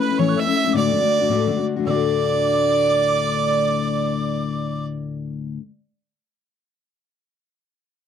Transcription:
Already playing: A3
0.00 B4 B5
0.09 A3 C#4 E4
0.18 A2 E3 A3 C#4 E4 C#5 C#6
0.29 F#6
0.35 E3 A3 C#4 E5 E6 F#6
0.39 E4
0.46 A3 C#4 E4
0.55 E5
0.64 A3 C#4 E4
0.73 D2 A2 D3 A3 D4 F#4 D5 D6
0.77 D5
0.92 D3 A3 D4 F#4
1.01 D3 A3 D4 F#4
1.20 D3 A3 D4 F#4
1.29 D2 A2 D3 A3 D4 F#4
1.47 D3 A3 D4 F#4
1.57 D3 A3 D4 F#4
1.76 D3 A3 D4 F#4
1.83 D2 A2 D3 D5 E6
1.88 A3 D4 F#4 D6

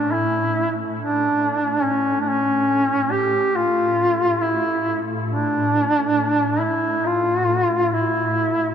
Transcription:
Already playing: A2 D4
0.12 E4
0.98 D4
1.83 C#4
2.21 D4
2.29 C#4
3.11 G4
3.56 F4
4.40 E4
5.29 D4
6.60 E4
7.05 F4
7.93 E4

